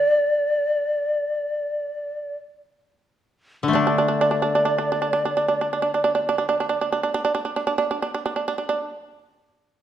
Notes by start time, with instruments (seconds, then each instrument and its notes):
Already playing: shakuhachi D5
3.63 koto D3
3.68 koto A3
3.73 koto D4, shamisen D4, shakuhachi D5
3.87 shamisen D4
3.98 shamisen D4
4.08 shamisen D4
4.21 shamisen D4
4.31 shamisen D4
4.42 shamisen D4
4.55 shamisen D4
4.65 shamisen D4
4.78 shamisen D4
4.92 shamisen D4
5.02 shamisen D4
5.13 shamisen D4
5.25 shamisen D4
5.37 shamisen D4
5.48 shamisen D4
5.61 shamisen D4
5.73 shamisen D4
5.82 shamisen D4
5.94 shamisen D4
6.04 shamisen D4
6.15 shamisen D4
6.29 shamisen D4
6.38 shamisen D4
6.49 shamisen D4
6.60 shamisen D4
6.69 shamisen D4
6.81 shamisen D4
6.92 shamisen D4
7.03 shamisen D4
7.14 shamisen D4
7.25 shamisen D4
7.35 shamisen D4
7.45 shamisen D4
7.56 shamisen D4
7.67 shamisen D4
7.78 shamisen D4
7.91 shamisen D4
8.02 shamisen D4
8.14 shamisen D4
8.26 shamisen D4
8.36 shamisen D4
8.48 shamisen D4
8.58 shamisen D4
8.69 shamisen D4